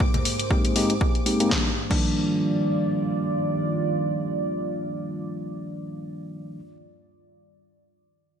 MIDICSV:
0, 0, Header, 1, 5, 480
1, 0, Start_track
1, 0, Key_signature, -3, "major"
1, 0, Tempo, 504202
1, 1440, Time_signature, 4, 2, 24, 8
1, 7997, End_track
2, 0, Start_track
2, 0, Title_t, "String machine"
2, 0, Program_c, 0, 50
2, 0, Note_on_c, 0, 86, 84
2, 1452, Note_off_c, 0, 86, 0
2, 7997, End_track
3, 0, Start_track
3, 0, Title_t, "Ambient pad"
3, 0, Program_c, 1, 92
3, 0, Note_on_c, 1, 44, 77
3, 0, Note_on_c, 1, 58, 71
3, 0, Note_on_c, 1, 68, 70
3, 0, Note_on_c, 1, 72, 85
3, 1403, Note_off_c, 1, 72, 0
3, 1404, Note_off_c, 1, 44, 0
3, 1404, Note_off_c, 1, 58, 0
3, 1422, Note_off_c, 1, 68, 0
3, 1440, Note_on_c, 1, 51, 72
3, 1440, Note_on_c, 1, 65, 69
3, 1441, Note_on_c, 1, 74, 83
3, 1442, Note_on_c, 1, 55, 77
3, 5898, Note_off_c, 1, 51, 0
3, 5898, Note_off_c, 1, 65, 0
3, 5899, Note_off_c, 1, 55, 0
3, 5899, Note_off_c, 1, 74, 0
3, 7997, End_track
4, 0, Start_track
4, 0, Title_t, "Tine electric piano"
4, 0, Program_c, 2, 4
4, 480, Note_on_c, 2, 56, 66
4, 481, Note_on_c, 2, 58, 63
4, 482, Note_on_c, 2, 60, 61
4, 483, Note_on_c, 2, 63, 61
4, 484, Note_on_c, 2, 67, 74
4, 695, Note_off_c, 2, 56, 0
4, 696, Note_off_c, 2, 58, 0
4, 696, Note_off_c, 2, 60, 0
4, 696, Note_off_c, 2, 63, 0
4, 697, Note_off_c, 2, 67, 0
4, 720, Note_on_c, 2, 56, 84
4, 721, Note_on_c, 2, 58, 75
4, 722, Note_on_c, 2, 60, 75
4, 723, Note_on_c, 2, 63, 75
4, 723, Note_on_c, 2, 67, 89
4, 880, Note_off_c, 2, 56, 0
4, 881, Note_off_c, 2, 58, 0
4, 881, Note_off_c, 2, 60, 0
4, 882, Note_off_c, 2, 63, 0
4, 882, Note_off_c, 2, 67, 0
4, 1198, Note_on_c, 2, 56, 69
4, 1199, Note_on_c, 2, 58, 64
4, 1200, Note_on_c, 2, 60, 66
4, 1202, Note_on_c, 2, 63, 65
4, 1203, Note_on_c, 2, 67, 80
4, 1314, Note_off_c, 2, 56, 0
4, 1314, Note_off_c, 2, 58, 0
4, 1315, Note_off_c, 2, 60, 0
4, 1315, Note_off_c, 2, 63, 0
4, 1316, Note_off_c, 2, 67, 0
4, 1333, Note_on_c, 2, 56, 82
4, 1334, Note_on_c, 2, 58, 74
4, 1335, Note_on_c, 2, 60, 71
4, 1336, Note_on_c, 2, 63, 73
4, 1337, Note_on_c, 2, 67, 88
4, 1427, Note_off_c, 2, 56, 0
4, 1428, Note_off_c, 2, 58, 0
4, 1428, Note_off_c, 2, 60, 0
4, 1429, Note_off_c, 2, 63, 0
4, 1429, Note_off_c, 2, 67, 0
4, 1435, Note_on_c, 2, 51, 75
4, 1438, Note_on_c, 2, 53, 68
4, 1443, Note_on_c, 2, 58, 70
4, 1582, Note_off_c, 2, 51, 0
4, 1584, Note_off_c, 2, 53, 0
4, 1587, Note_off_c, 2, 58, 0
4, 1809, Note_on_c, 2, 51, 74
4, 1812, Note_on_c, 2, 53, 68
4, 1814, Note_on_c, 2, 55, 68
4, 1818, Note_on_c, 2, 58, 67
4, 1820, Note_on_c, 2, 62, 82
4, 6267, Note_off_c, 2, 51, 0
4, 6269, Note_off_c, 2, 53, 0
4, 6272, Note_off_c, 2, 55, 0
4, 6275, Note_off_c, 2, 58, 0
4, 6278, Note_off_c, 2, 62, 0
4, 7997, End_track
5, 0, Start_track
5, 0, Title_t, "Drums"
5, 2, Note_on_c, 9, 36, 114
5, 97, Note_off_c, 9, 36, 0
5, 135, Note_on_c, 9, 42, 46
5, 135, Note_on_c, 9, 63, 76
5, 230, Note_off_c, 9, 63, 0
5, 231, Note_off_c, 9, 42, 0
5, 241, Note_on_c, 9, 46, 99
5, 336, Note_off_c, 9, 46, 0
5, 376, Note_on_c, 9, 42, 57
5, 471, Note_off_c, 9, 42, 0
5, 481, Note_on_c, 9, 36, 109
5, 576, Note_off_c, 9, 36, 0
5, 615, Note_on_c, 9, 42, 46
5, 710, Note_off_c, 9, 42, 0
5, 721, Note_on_c, 9, 46, 97
5, 816, Note_off_c, 9, 46, 0
5, 855, Note_on_c, 9, 42, 55
5, 950, Note_off_c, 9, 42, 0
5, 961, Note_on_c, 9, 36, 113
5, 1056, Note_off_c, 9, 36, 0
5, 1095, Note_on_c, 9, 42, 31
5, 1191, Note_off_c, 9, 42, 0
5, 1201, Note_on_c, 9, 46, 98
5, 1296, Note_off_c, 9, 46, 0
5, 1335, Note_on_c, 9, 42, 56
5, 1430, Note_off_c, 9, 42, 0
5, 1441, Note_on_c, 9, 36, 103
5, 1441, Note_on_c, 9, 38, 75
5, 1536, Note_off_c, 9, 36, 0
5, 1536, Note_off_c, 9, 38, 0
5, 1815, Note_on_c, 9, 36, 101
5, 1815, Note_on_c, 9, 49, 77
5, 1910, Note_off_c, 9, 36, 0
5, 1910, Note_off_c, 9, 49, 0
5, 7997, End_track
0, 0, End_of_file